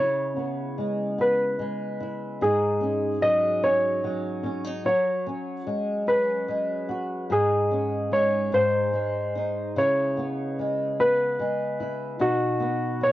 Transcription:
0, 0, Header, 1, 3, 480
1, 0, Start_track
1, 0, Key_signature, 4, "minor"
1, 0, Tempo, 817439
1, 1422, Time_signature, 6, 3, 24, 8
1, 7704, End_track
2, 0, Start_track
2, 0, Title_t, "Grand piano"
2, 0, Program_c, 0, 0
2, 0, Note_on_c, 0, 73, 65
2, 430, Note_off_c, 0, 73, 0
2, 711, Note_on_c, 0, 71, 60
2, 1422, Note_on_c, 0, 68, 71
2, 1449, Note_off_c, 0, 71, 0
2, 1878, Note_off_c, 0, 68, 0
2, 1893, Note_on_c, 0, 75, 77
2, 2135, Note_on_c, 0, 73, 70
2, 2143, Note_off_c, 0, 75, 0
2, 2844, Note_off_c, 0, 73, 0
2, 2853, Note_on_c, 0, 73, 68
2, 3308, Note_off_c, 0, 73, 0
2, 3570, Note_on_c, 0, 71, 65
2, 4299, Note_on_c, 0, 68, 75
2, 4310, Note_off_c, 0, 71, 0
2, 4774, Note_on_c, 0, 73, 74
2, 4788, Note_off_c, 0, 68, 0
2, 5014, Note_on_c, 0, 72, 69
2, 5019, Note_off_c, 0, 73, 0
2, 5745, Note_on_c, 0, 73, 72
2, 5758, Note_off_c, 0, 72, 0
2, 6198, Note_off_c, 0, 73, 0
2, 6459, Note_on_c, 0, 71, 75
2, 7172, Note_on_c, 0, 66, 73
2, 7196, Note_off_c, 0, 71, 0
2, 7654, Note_on_c, 0, 73, 77
2, 7664, Note_off_c, 0, 66, 0
2, 7704, Note_off_c, 0, 73, 0
2, 7704, End_track
3, 0, Start_track
3, 0, Title_t, "Nylon-string guitar"
3, 0, Program_c, 1, 24
3, 0, Note_on_c, 1, 49, 60
3, 0, Note_on_c, 1, 61, 44
3, 0, Note_on_c, 1, 64, 50
3, 212, Note_off_c, 1, 61, 0
3, 214, Note_on_c, 1, 59, 44
3, 458, Note_on_c, 1, 56, 45
3, 688, Note_off_c, 1, 59, 0
3, 695, Note_on_c, 1, 59, 47
3, 932, Note_off_c, 1, 56, 0
3, 934, Note_on_c, 1, 56, 40
3, 1169, Note_off_c, 1, 64, 0
3, 1176, Note_on_c, 1, 64, 49
3, 1416, Note_off_c, 1, 64, 0
3, 1416, Note_on_c, 1, 44, 62
3, 1419, Note_off_c, 1, 49, 0
3, 1419, Note_on_c, 1, 63, 50
3, 1468, Note_off_c, 1, 59, 0
3, 1649, Note_on_c, 1, 61, 44
3, 1885, Note_off_c, 1, 56, 0
3, 1888, Note_on_c, 1, 54, 44
3, 2129, Note_off_c, 1, 61, 0
3, 2131, Note_on_c, 1, 61, 49
3, 2370, Note_off_c, 1, 54, 0
3, 2372, Note_on_c, 1, 54, 43
3, 2600, Note_off_c, 1, 63, 0
3, 2602, Note_off_c, 1, 61, 0
3, 2602, Note_on_c, 1, 61, 53
3, 2726, Note_off_c, 1, 61, 0
3, 2726, Note_on_c, 1, 63, 44
3, 2847, Note_off_c, 1, 54, 0
3, 2847, Note_on_c, 1, 54, 65
3, 2850, Note_off_c, 1, 63, 0
3, 2852, Note_on_c, 1, 66, 55
3, 2853, Note_off_c, 1, 44, 0
3, 3091, Note_on_c, 1, 61, 49
3, 3326, Note_on_c, 1, 56, 46
3, 3561, Note_off_c, 1, 61, 0
3, 3564, Note_on_c, 1, 61, 48
3, 3804, Note_off_c, 1, 56, 0
3, 3806, Note_on_c, 1, 56, 45
3, 4037, Note_off_c, 1, 66, 0
3, 4044, Note_on_c, 1, 66, 49
3, 4286, Note_off_c, 1, 54, 0
3, 4286, Note_off_c, 1, 66, 0
3, 4286, Note_on_c, 1, 44, 59
3, 4289, Note_on_c, 1, 63, 52
3, 4333, Note_off_c, 1, 61, 0
3, 4529, Note_on_c, 1, 61, 43
3, 4764, Note_off_c, 1, 56, 0
3, 4766, Note_on_c, 1, 56, 45
3, 4996, Note_off_c, 1, 44, 0
3, 5003, Note_on_c, 1, 44, 58
3, 5057, Note_off_c, 1, 63, 0
3, 5058, Note_off_c, 1, 61, 0
3, 5243, Note_off_c, 1, 56, 0
3, 5245, Note_on_c, 1, 56, 41
3, 5492, Note_on_c, 1, 63, 48
3, 5731, Note_off_c, 1, 63, 0
3, 5732, Note_on_c, 1, 49, 62
3, 5734, Note_on_c, 1, 64, 50
3, 5779, Note_off_c, 1, 44, 0
3, 5973, Note_on_c, 1, 59, 44
3, 6216, Note_off_c, 1, 56, 0
3, 6218, Note_on_c, 1, 56, 43
3, 6454, Note_off_c, 1, 59, 0
3, 6456, Note_on_c, 1, 59, 47
3, 6683, Note_off_c, 1, 56, 0
3, 6690, Note_on_c, 1, 56, 46
3, 6921, Note_off_c, 1, 64, 0
3, 6928, Note_on_c, 1, 64, 51
3, 7161, Note_on_c, 1, 47, 67
3, 7162, Note_off_c, 1, 64, 0
3, 7164, Note_on_c, 1, 63, 54
3, 7172, Note_off_c, 1, 49, 0
3, 7218, Note_off_c, 1, 56, 0
3, 7396, Note_off_c, 1, 59, 0
3, 7399, Note_on_c, 1, 59, 46
3, 7640, Note_on_c, 1, 54, 43
3, 7704, Note_off_c, 1, 47, 0
3, 7704, Note_off_c, 1, 54, 0
3, 7704, Note_off_c, 1, 59, 0
3, 7704, Note_off_c, 1, 63, 0
3, 7704, End_track
0, 0, End_of_file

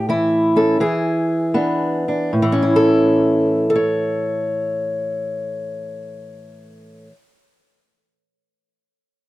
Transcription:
0, 0, Header, 1, 2, 480
1, 0, Start_track
1, 0, Key_signature, 3, "major"
1, 0, Tempo, 709220
1, 552, Tempo, 765306
1, 1512, Time_signature, 4, 2, 24, 8
1, 1512, Tempo, 808625
1, 5630, End_track
2, 0, Start_track
2, 0, Title_t, "Steel-string acoustic guitar"
2, 0, Program_c, 0, 25
2, 0, Note_on_c, 0, 45, 79
2, 58, Note_on_c, 0, 52, 58
2, 65, Note_on_c, 0, 64, 77
2, 380, Note_on_c, 0, 61, 48
2, 384, Note_on_c, 0, 69, 70
2, 526, Note_off_c, 0, 61, 0
2, 528, Note_off_c, 0, 45, 0
2, 536, Note_off_c, 0, 52, 0
2, 543, Note_on_c, 0, 52, 69
2, 544, Note_off_c, 0, 69, 0
2, 547, Note_on_c, 0, 68, 76
2, 549, Note_off_c, 0, 64, 0
2, 1008, Note_on_c, 0, 59, 66
2, 1010, Note_on_c, 0, 62, 45
2, 1339, Note_off_c, 0, 62, 0
2, 1346, Note_on_c, 0, 62, 43
2, 1487, Note_off_c, 0, 59, 0
2, 1490, Note_off_c, 0, 62, 0
2, 1501, Note_on_c, 0, 45, 64
2, 1509, Note_off_c, 0, 68, 0
2, 1551, Note_off_c, 0, 52, 0
2, 1558, Note_on_c, 0, 52, 64
2, 1617, Note_on_c, 0, 61, 64
2, 1677, Note_on_c, 0, 64, 55
2, 1757, Note_on_c, 0, 69, 76
2, 2308, Note_off_c, 0, 69, 0
2, 2313, Note_off_c, 0, 61, 0
2, 2315, Note_on_c, 0, 69, 71
2, 2346, Note_off_c, 0, 64, 0
2, 2349, Note_on_c, 0, 73, 70
2, 4318, Note_off_c, 0, 45, 0
2, 4322, Note_off_c, 0, 69, 0
2, 4338, Note_off_c, 0, 73, 0
2, 4346, Note_off_c, 0, 52, 0
2, 5630, End_track
0, 0, End_of_file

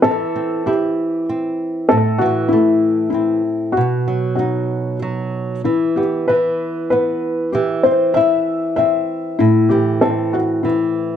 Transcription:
0, 0, Header, 1, 3, 480
1, 0, Start_track
1, 0, Tempo, 624350
1, 28, Time_signature, 3, 2, 24, 8
1, 8584, End_track
2, 0, Start_track
2, 0, Title_t, "Felt piano"
2, 0, Program_c, 0, 0
2, 18, Note_on_c, 0, 69, 86
2, 508, Note_on_c, 0, 67, 76
2, 521, Note_off_c, 0, 69, 0
2, 957, Note_off_c, 0, 67, 0
2, 1451, Note_on_c, 0, 69, 91
2, 1679, Note_on_c, 0, 66, 88
2, 1700, Note_off_c, 0, 69, 0
2, 1910, Note_on_c, 0, 64, 83
2, 1934, Note_off_c, 0, 66, 0
2, 2371, Note_off_c, 0, 64, 0
2, 2383, Note_on_c, 0, 64, 74
2, 2862, Note_on_c, 0, 66, 82
2, 2888, Note_off_c, 0, 64, 0
2, 3336, Note_off_c, 0, 66, 0
2, 3348, Note_on_c, 0, 66, 64
2, 3814, Note_off_c, 0, 66, 0
2, 4338, Note_on_c, 0, 64, 69
2, 4581, Note_on_c, 0, 67, 71
2, 4590, Note_off_c, 0, 64, 0
2, 4825, Note_on_c, 0, 71, 83
2, 4835, Note_off_c, 0, 67, 0
2, 5295, Note_off_c, 0, 71, 0
2, 5307, Note_on_c, 0, 71, 82
2, 5758, Note_off_c, 0, 71, 0
2, 5784, Note_on_c, 0, 67, 78
2, 6023, Note_on_c, 0, 72, 89
2, 6035, Note_off_c, 0, 67, 0
2, 6258, Note_on_c, 0, 76, 99
2, 6273, Note_off_c, 0, 72, 0
2, 6725, Note_off_c, 0, 76, 0
2, 6737, Note_on_c, 0, 76, 94
2, 7217, Note_on_c, 0, 64, 91
2, 7234, Note_off_c, 0, 76, 0
2, 7442, Note_off_c, 0, 64, 0
2, 7450, Note_on_c, 0, 67, 85
2, 7698, Note_on_c, 0, 69, 82
2, 7703, Note_off_c, 0, 67, 0
2, 7942, Note_on_c, 0, 66, 71
2, 7947, Note_off_c, 0, 69, 0
2, 8172, Note_on_c, 0, 64, 69
2, 8190, Note_off_c, 0, 66, 0
2, 8584, Note_off_c, 0, 64, 0
2, 8584, End_track
3, 0, Start_track
3, 0, Title_t, "Nylon-string guitar"
3, 0, Program_c, 1, 24
3, 32, Note_on_c, 1, 52, 63
3, 274, Note_on_c, 1, 60, 46
3, 513, Note_on_c, 1, 64, 52
3, 986, Note_off_c, 1, 60, 0
3, 995, Note_on_c, 1, 60, 48
3, 1434, Note_off_c, 1, 52, 0
3, 1435, Note_off_c, 1, 64, 0
3, 1451, Note_off_c, 1, 60, 0
3, 1471, Note_on_c, 1, 45, 57
3, 1702, Note_on_c, 1, 52, 51
3, 1943, Note_on_c, 1, 57, 57
3, 2415, Note_on_c, 1, 60, 48
3, 2622, Note_off_c, 1, 52, 0
3, 2862, Note_off_c, 1, 45, 0
3, 2863, Note_off_c, 1, 57, 0
3, 2876, Note_off_c, 1, 60, 0
3, 2899, Note_on_c, 1, 47, 59
3, 3134, Note_on_c, 1, 54, 46
3, 3377, Note_on_c, 1, 63, 47
3, 3853, Note_off_c, 1, 54, 0
3, 3862, Note_on_c, 1, 54, 50
3, 4316, Note_off_c, 1, 47, 0
3, 4316, Note_off_c, 1, 63, 0
3, 4330, Note_off_c, 1, 54, 0
3, 4344, Note_on_c, 1, 52, 58
3, 4592, Note_on_c, 1, 59, 46
3, 4829, Note_off_c, 1, 52, 0
3, 4838, Note_on_c, 1, 52, 47
3, 5313, Note_off_c, 1, 59, 0
3, 5322, Note_on_c, 1, 59, 48
3, 5768, Note_off_c, 1, 52, 0
3, 5782, Note_off_c, 1, 59, 0
3, 5801, Note_on_c, 1, 52, 60
3, 6042, Note_on_c, 1, 60, 45
3, 6279, Note_on_c, 1, 64, 54
3, 6742, Note_off_c, 1, 60, 0
3, 6752, Note_on_c, 1, 60, 47
3, 7198, Note_off_c, 1, 52, 0
3, 7200, Note_off_c, 1, 64, 0
3, 7212, Note_off_c, 1, 60, 0
3, 7229, Note_on_c, 1, 45, 55
3, 7466, Note_on_c, 1, 52, 49
3, 7704, Note_on_c, 1, 60, 57
3, 8176, Note_off_c, 1, 52, 0
3, 8185, Note_on_c, 1, 52, 47
3, 8584, Note_off_c, 1, 45, 0
3, 8584, Note_off_c, 1, 52, 0
3, 8584, Note_off_c, 1, 60, 0
3, 8584, End_track
0, 0, End_of_file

